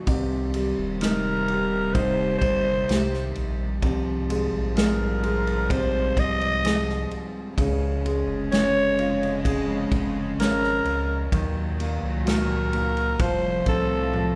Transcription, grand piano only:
0, 0, Header, 1, 2, 480
1, 0, Start_track
1, 0, Key_signature, -5, "minor"
1, 0, Tempo, 937500
1, 37, Time_signature, 4, 2, 24, 8
1, 7349, End_track
2, 0, Start_track
2, 0, Title_t, "Grand piano"
2, 0, Program_c, 0, 0
2, 0, Control_c, 0, 64, 127
2, 36, Note_on_c, 0, 48, 68
2, 45, Control_c, 0, 64, 0
2, 147, Control_c, 0, 64, 127
2, 285, Note_on_c, 0, 55, 56
2, 522, Note_on_c, 0, 63, 59
2, 768, Note_on_c, 0, 67, 54
2, 991, Note_off_c, 0, 63, 0
2, 999, Note_on_c, 0, 63, 61
2, 1220, Note_off_c, 0, 55, 0
2, 1478, Note_off_c, 0, 67, 0
2, 1486, Note_on_c, 0, 67, 60
2, 1936, Note_off_c, 0, 48, 0
2, 1938, Note_off_c, 0, 63, 0
2, 1947, Note_off_c, 0, 67, 0
2, 1962, Note_on_c, 0, 48, 71
2, 1964, Control_c, 0, 64, 0
2, 2049, Control_c, 0, 64, 127
2, 2204, Note_on_c, 0, 56, 59
2, 2437, Note_on_c, 0, 68, 59
2, 2673, Note_off_c, 0, 56, 0
2, 2681, Note_on_c, 0, 56, 57
2, 2915, Note_off_c, 0, 48, 0
2, 2923, Note_on_c, 0, 48, 62
2, 3377, Note_off_c, 0, 68, 0
2, 3403, Note_on_c, 0, 68, 61
2, 3618, Note_off_c, 0, 56, 0
2, 3860, Note_off_c, 0, 48, 0
2, 3866, Note_off_c, 0, 68, 0
2, 3883, Control_c, 0, 64, 0
2, 3885, Note_on_c, 0, 49, 70
2, 3968, Control_c, 0, 64, 127
2, 4124, Note_on_c, 0, 56, 57
2, 4365, Note_on_c, 0, 61, 60
2, 4604, Note_on_c, 0, 65, 59
2, 4843, Note_on_c, 0, 68, 65
2, 5060, Note_off_c, 0, 56, 0
2, 5301, Note_off_c, 0, 61, 0
2, 5330, Note_on_c, 0, 61, 59
2, 5540, Note_off_c, 0, 65, 0
2, 5780, Note_off_c, 0, 68, 0
2, 5781, Note_off_c, 0, 49, 0
2, 5789, Note_off_c, 0, 61, 0
2, 5803, Control_c, 0, 64, 0
2, 5805, Note_on_c, 0, 51, 70
2, 5889, Control_c, 0, 64, 127
2, 6042, Note_on_c, 0, 58, 54
2, 6277, Note_on_c, 0, 66, 57
2, 6512, Note_off_c, 0, 58, 0
2, 6519, Note_on_c, 0, 58, 53
2, 6741, Note_off_c, 0, 51, 0
2, 6742, Note_off_c, 0, 66, 0
2, 6751, Note_off_c, 0, 58, 0
2, 6761, Note_on_c, 0, 53, 70
2, 6764, Control_c, 0, 64, 0
2, 6843, Control_c, 0, 64, 127
2, 6999, Note_on_c, 0, 60, 55
2, 7234, Note_off_c, 0, 53, 0
2, 7242, Note_on_c, 0, 53, 58
2, 7349, Note_off_c, 0, 53, 0
2, 7349, Note_off_c, 0, 60, 0
2, 7349, End_track
0, 0, End_of_file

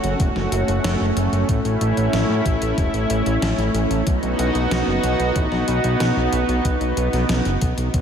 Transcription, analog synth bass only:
0, 0, Header, 1, 2, 480
1, 0, Start_track
1, 0, Tempo, 645161
1, 1107, Time_signature, 4, 2, 24, 8
1, 5962, End_track
2, 0, Start_track
2, 0, Title_t, "Analog synth bass"
2, 0, Program_c, 0, 38
2, 28, Note_on_c, 0, 30, 80
2, 115, Note_off_c, 0, 30, 0
2, 147, Note_on_c, 0, 28, 102
2, 234, Note_off_c, 0, 28, 0
2, 268, Note_on_c, 0, 30, 73
2, 355, Note_off_c, 0, 30, 0
2, 387, Note_on_c, 0, 30, 95
2, 474, Note_off_c, 0, 30, 0
2, 507, Note_on_c, 0, 30, 88
2, 594, Note_off_c, 0, 30, 0
2, 628, Note_on_c, 0, 30, 99
2, 715, Note_off_c, 0, 30, 0
2, 748, Note_on_c, 0, 30, 76
2, 835, Note_off_c, 0, 30, 0
2, 868, Note_on_c, 0, 30, 91
2, 955, Note_off_c, 0, 30, 0
2, 988, Note_on_c, 0, 30, 85
2, 1075, Note_off_c, 0, 30, 0
2, 1107, Note_on_c, 0, 33, 104
2, 1194, Note_off_c, 0, 33, 0
2, 1228, Note_on_c, 0, 33, 79
2, 1315, Note_off_c, 0, 33, 0
2, 1348, Note_on_c, 0, 33, 96
2, 1435, Note_off_c, 0, 33, 0
2, 1468, Note_on_c, 0, 33, 77
2, 1555, Note_off_c, 0, 33, 0
2, 1588, Note_on_c, 0, 33, 101
2, 1675, Note_off_c, 0, 33, 0
2, 1709, Note_on_c, 0, 45, 79
2, 1795, Note_off_c, 0, 45, 0
2, 1827, Note_on_c, 0, 33, 91
2, 1914, Note_off_c, 0, 33, 0
2, 1948, Note_on_c, 0, 33, 80
2, 2035, Note_off_c, 0, 33, 0
2, 2068, Note_on_c, 0, 28, 99
2, 2155, Note_off_c, 0, 28, 0
2, 2187, Note_on_c, 0, 33, 77
2, 2274, Note_off_c, 0, 33, 0
2, 2308, Note_on_c, 0, 33, 94
2, 2395, Note_off_c, 0, 33, 0
2, 2427, Note_on_c, 0, 33, 88
2, 2514, Note_off_c, 0, 33, 0
2, 2546, Note_on_c, 0, 33, 103
2, 2634, Note_off_c, 0, 33, 0
2, 2666, Note_on_c, 0, 33, 74
2, 2754, Note_off_c, 0, 33, 0
2, 2786, Note_on_c, 0, 33, 93
2, 2874, Note_off_c, 0, 33, 0
2, 2906, Note_on_c, 0, 33, 84
2, 2994, Note_off_c, 0, 33, 0
2, 3027, Note_on_c, 0, 35, 98
2, 3114, Note_off_c, 0, 35, 0
2, 3148, Note_on_c, 0, 35, 78
2, 3235, Note_off_c, 0, 35, 0
2, 3268, Note_on_c, 0, 35, 98
2, 3355, Note_off_c, 0, 35, 0
2, 3387, Note_on_c, 0, 35, 80
2, 3474, Note_off_c, 0, 35, 0
2, 3507, Note_on_c, 0, 35, 102
2, 3594, Note_off_c, 0, 35, 0
2, 3628, Note_on_c, 0, 30, 75
2, 3715, Note_off_c, 0, 30, 0
2, 3748, Note_on_c, 0, 35, 91
2, 3835, Note_off_c, 0, 35, 0
2, 3868, Note_on_c, 0, 35, 83
2, 3955, Note_off_c, 0, 35, 0
2, 3987, Note_on_c, 0, 33, 104
2, 4074, Note_off_c, 0, 33, 0
2, 4107, Note_on_c, 0, 35, 72
2, 4194, Note_off_c, 0, 35, 0
2, 4227, Note_on_c, 0, 35, 97
2, 4315, Note_off_c, 0, 35, 0
2, 4347, Note_on_c, 0, 35, 84
2, 4434, Note_off_c, 0, 35, 0
2, 4467, Note_on_c, 0, 35, 96
2, 4554, Note_off_c, 0, 35, 0
2, 4588, Note_on_c, 0, 35, 74
2, 4675, Note_off_c, 0, 35, 0
2, 4708, Note_on_c, 0, 35, 96
2, 4795, Note_off_c, 0, 35, 0
2, 4827, Note_on_c, 0, 35, 82
2, 4914, Note_off_c, 0, 35, 0
2, 4946, Note_on_c, 0, 35, 101
2, 5034, Note_off_c, 0, 35, 0
2, 5066, Note_on_c, 0, 35, 76
2, 5154, Note_off_c, 0, 35, 0
2, 5186, Note_on_c, 0, 35, 97
2, 5274, Note_off_c, 0, 35, 0
2, 5307, Note_on_c, 0, 35, 80
2, 5395, Note_off_c, 0, 35, 0
2, 5427, Note_on_c, 0, 35, 102
2, 5515, Note_off_c, 0, 35, 0
2, 5548, Note_on_c, 0, 30, 79
2, 5635, Note_off_c, 0, 30, 0
2, 5667, Note_on_c, 0, 35, 96
2, 5754, Note_off_c, 0, 35, 0
2, 5788, Note_on_c, 0, 35, 80
2, 5875, Note_off_c, 0, 35, 0
2, 5907, Note_on_c, 0, 35, 101
2, 5962, Note_off_c, 0, 35, 0
2, 5962, End_track
0, 0, End_of_file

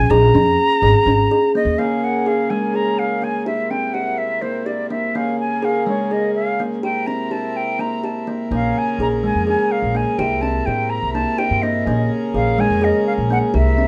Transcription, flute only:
0, 0, Header, 1, 2, 480
1, 0, Start_track
1, 0, Tempo, 480384
1, 99, Time_signature, 7, 3, 24, 8
1, 13866, End_track
2, 0, Start_track
2, 0, Title_t, "Flute"
2, 0, Program_c, 0, 73
2, 0, Note_on_c, 0, 80, 90
2, 104, Note_on_c, 0, 82, 95
2, 119, Note_off_c, 0, 80, 0
2, 1539, Note_off_c, 0, 82, 0
2, 1556, Note_on_c, 0, 75, 72
2, 1783, Note_on_c, 0, 77, 63
2, 1798, Note_off_c, 0, 75, 0
2, 2039, Note_on_c, 0, 78, 64
2, 2054, Note_off_c, 0, 77, 0
2, 2274, Note_on_c, 0, 77, 62
2, 2289, Note_off_c, 0, 78, 0
2, 2499, Note_on_c, 0, 80, 64
2, 2514, Note_off_c, 0, 77, 0
2, 2753, Note_on_c, 0, 82, 64
2, 2768, Note_off_c, 0, 80, 0
2, 2986, Note_on_c, 0, 77, 59
2, 3001, Note_off_c, 0, 82, 0
2, 3236, Note_on_c, 0, 80, 59
2, 3251, Note_off_c, 0, 77, 0
2, 3459, Note_off_c, 0, 80, 0
2, 3465, Note_on_c, 0, 76, 63
2, 3703, Note_on_c, 0, 79, 66
2, 3718, Note_off_c, 0, 76, 0
2, 3932, Note_on_c, 0, 78, 66
2, 3947, Note_off_c, 0, 79, 0
2, 4178, Note_on_c, 0, 76, 65
2, 4193, Note_off_c, 0, 78, 0
2, 4413, Note_on_c, 0, 72, 60
2, 4428, Note_off_c, 0, 76, 0
2, 4656, Note_on_c, 0, 74, 57
2, 4671, Note_off_c, 0, 72, 0
2, 4892, Note_off_c, 0, 74, 0
2, 4898, Note_on_c, 0, 76, 67
2, 5159, Note_on_c, 0, 77, 66
2, 5174, Note_off_c, 0, 76, 0
2, 5390, Note_off_c, 0, 77, 0
2, 5395, Note_on_c, 0, 80, 65
2, 5643, Note_on_c, 0, 77, 65
2, 5658, Note_off_c, 0, 80, 0
2, 5872, Note_off_c, 0, 77, 0
2, 5878, Note_on_c, 0, 73, 60
2, 6119, Note_on_c, 0, 75, 66
2, 6134, Note_off_c, 0, 73, 0
2, 6337, Note_off_c, 0, 75, 0
2, 6343, Note_on_c, 0, 77, 66
2, 6611, Note_off_c, 0, 77, 0
2, 6830, Note_on_c, 0, 79, 69
2, 7062, Note_on_c, 0, 82, 62
2, 7077, Note_off_c, 0, 79, 0
2, 7310, Note_on_c, 0, 81, 69
2, 7325, Note_off_c, 0, 82, 0
2, 7559, Note_on_c, 0, 79, 62
2, 7574, Note_off_c, 0, 81, 0
2, 7798, Note_on_c, 0, 82, 63
2, 7813, Note_off_c, 0, 79, 0
2, 8038, Note_on_c, 0, 81, 56
2, 8053, Note_off_c, 0, 82, 0
2, 8271, Note_off_c, 0, 81, 0
2, 8538, Note_on_c, 0, 77, 69
2, 8775, Note_on_c, 0, 80, 74
2, 8790, Note_off_c, 0, 77, 0
2, 8999, Note_off_c, 0, 80, 0
2, 9012, Note_on_c, 0, 82, 68
2, 9072, Note_off_c, 0, 82, 0
2, 9238, Note_on_c, 0, 80, 74
2, 9455, Note_off_c, 0, 80, 0
2, 9474, Note_on_c, 0, 80, 73
2, 9709, Note_on_c, 0, 77, 65
2, 9724, Note_off_c, 0, 80, 0
2, 9956, Note_on_c, 0, 80, 66
2, 9971, Note_off_c, 0, 77, 0
2, 10177, Note_on_c, 0, 79, 70
2, 10192, Note_off_c, 0, 80, 0
2, 10408, Note_on_c, 0, 81, 66
2, 10423, Note_off_c, 0, 79, 0
2, 10650, Note_on_c, 0, 79, 71
2, 10665, Note_off_c, 0, 81, 0
2, 10891, Note_on_c, 0, 82, 74
2, 10906, Note_off_c, 0, 79, 0
2, 11124, Note_off_c, 0, 82, 0
2, 11130, Note_on_c, 0, 81, 73
2, 11375, Note_on_c, 0, 79, 64
2, 11390, Note_off_c, 0, 81, 0
2, 11614, Note_on_c, 0, 75, 62
2, 11629, Note_off_c, 0, 79, 0
2, 12096, Note_off_c, 0, 75, 0
2, 12345, Note_on_c, 0, 77, 78
2, 12592, Note_on_c, 0, 80, 86
2, 12607, Note_off_c, 0, 77, 0
2, 12834, Note_on_c, 0, 75, 75
2, 12849, Note_off_c, 0, 80, 0
2, 13054, Note_off_c, 0, 75, 0
2, 13060, Note_on_c, 0, 77, 70
2, 13120, Note_off_c, 0, 77, 0
2, 13310, Note_on_c, 0, 78, 79
2, 13370, Note_off_c, 0, 78, 0
2, 13560, Note_on_c, 0, 76, 72
2, 13866, Note_off_c, 0, 76, 0
2, 13866, End_track
0, 0, End_of_file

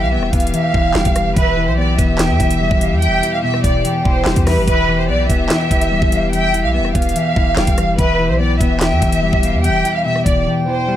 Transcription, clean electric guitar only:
0, 0, Header, 1, 2, 480
1, 0, Start_track
1, 0, Tempo, 413793
1, 1583, Time_signature, 4, 2, 24, 8
1, 12719, End_track
2, 0, Start_track
2, 0, Title_t, "Clean electric guitar"
2, 0, Program_c, 0, 27
2, 0, Note_on_c, 0, 40, 94
2, 0, Note_on_c, 0, 52, 81
2, 0, Note_on_c, 0, 55, 95
2, 143, Note_on_c, 0, 59, 93
2, 369, Note_off_c, 0, 59, 0
2, 383, Note_off_c, 0, 55, 0
2, 383, Note_on_c, 0, 59, 89
2, 613, Note_off_c, 0, 40, 0
2, 627, Note_on_c, 0, 40, 93
2, 849, Note_off_c, 0, 52, 0
2, 863, Note_on_c, 0, 52, 87
2, 1103, Note_on_c, 0, 55, 96
2, 1328, Note_off_c, 0, 40, 0
2, 1342, Note_on_c, 0, 40, 82
2, 1573, Note_off_c, 0, 40, 0
2, 1583, Note_off_c, 0, 52, 0
2, 1583, Note_off_c, 0, 55, 0
2, 1583, Note_off_c, 0, 59, 0
2, 1587, Note_on_c, 0, 40, 93
2, 1826, Note_on_c, 0, 52, 81
2, 2064, Note_on_c, 0, 59, 84
2, 2290, Note_off_c, 0, 59, 0
2, 2304, Note_on_c, 0, 59, 90
2, 2528, Note_off_c, 0, 40, 0
2, 2542, Note_on_c, 0, 40, 98
2, 2767, Note_off_c, 0, 52, 0
2, 2781, Note_on_c, 0, 52, 88
2, 3020, Note_on_c, 0, 55, 93
2, 3250, Note_off_c, 0, 40, 0
2, 3264, Note_on_c, 0, 40, 74
2, 3492, Note_off_c, 0, 40, 0
2, 3504, Note_off_c, 0, 59, 0
2, 3506, Note_on_c, 0, 40, 96
2, 3728, Note_off_c, 0, 52, 0
2, 3742, Note_on_c, 0, 52, 82
2, 3983, Note_on_c, 0, 47, 93
2, 4222, Note_off_c, 0, 55, 0
2, 4453, Note_off_c, 0, 40, 0
2, 4467, Note_on_c, 0, 40, 103
2, 4690, Note_off_c, 0, 52, 0
2, 4703, Note_on_c, 0, 52, 87
2, 4942, Note_on_c, 0, 55, 93
2, 5166, Note_off_c, 0, 40, 0
2, 5180, Note_on_c, 0, 40, 77
2, 5183, Note_off_c, 0, 47, 0
2, 5410, Note_off_c, 0, 40, 0
2, 5423, Note_off_c, 0, 52, 0
2, 5423, Note_off_c, 0, 55, 0
2, 5424, Note_on_c, 0, 40, 98
2, 5665, Note_on_c, 0, 52, 84
2, 5906, Note_on_c, 0, 59, 92
2, 6129, Note_off_c, 0, 59, 0
2, 6143, Note_on_c, 0, 59, 94
2, 6370, Note_off_c, 0, 40, 0
2, 6384, Note_on_c, 0, 40, 98
2, 6607, Note_off_c, 0, 52, 0
2, 6621, Note_on_c, 0, 52, 91
2, 6861, Note_on_c, 0, 55, 95
2, 7087, Note_off_c, 0, 40, 0
2, 7101, Note_on_c, 0, 40, 77
2, 7325, Note_off_c, 0, 40, 0
2, 7339, Note_on_c, 0, 40, 94
2, 7343, Note_off_c, 0, 59, 0
2, 7569, Note_off_c, 0, 52, 0
2, 7583, Note_on_c, 0, 52, 81
2, 7823, Note_on_c, 0, 59, 93
2, 8048, Note_off_c, 0, 59, 0
2, 8062, Note_off_c, 0, 55, 0
2, 8062, Note_on_c, 0, 59, 87
2, 8292, Note_off_c, 0, 40, 0
2, 8306, Note_on_c, 0, 40, 95
2, 8528, Note_off_c, 0, 52, 0
2, 8542, Note_on_c, 0, 52, 89
2, 8782, Note_on_c, 0, 55, 94
2, 9008, Note_off_c, 0, 40, 0
2, 9022, Note_on_c, 0, 40, 82
2, 9252, Note_off_c, 0, 40, 0
2, 9263, Note_off_c, 0, 52, 0
2, 9263, Note_off_c, 0, 55, 0
2, 9263, Note_off_c, 0, 59, 0
2, 9266, Note_on_c, 0, 40, 96
2, 9506, Note_on_c, 0, 52, 81
2, 9743, Note_on_c, 0, 59, 87
2, 9969, Note_off_c, 0, 59, 0
2, 9983, Note_on_c, 0, 59, 92
2, 10207, Note_off_c, 0, 40, 0
2, 10221, Note_on_c, 0, 40, 96
2, 10447, Note_off_c, 0, 52, 0
2, 10461, Note_on_c, 0, 52, 89
2, 10700, Note_on_c, 0, 55, 94
2, 10929, Note_off_c, 0, 40, 0
2, 10943, Note_on_c, 0, 40, 77
2, 11171, Note_off_c, 0, 40, 0
2, 11183, Note_off_c, 0, 59, 0
2, 11184, Note_on_c, 0, 40, 94
2, 11408, Note_off_c, 0, 52, 0
2, 11422, Note_on_c, 0, 52, 81
2, 11663, Note_on_c, 0, 47, 98
2, 11902, Note_off_c, 0, 55, 0
2, 12132, Note_off_c, 0, 40, 0
2, 12146, Note_on_c, 0, 40, 101
2, 12368, Note_off_c, 0, 52, 0
2, 12382, Note_on_c, 0, 52, 86
2, 12621, Note_on_c, 0, 55, 94
2, 12719, Note_off_c, 0, 40, 0
2, 12719, Note_off_c, 0, 47, 0
2, 12719, Note_off_c, 0, 52, 0
2, 12719, Note_off_c, 0, 55, 0
2, 12719, End_track
0, 0, End_of_file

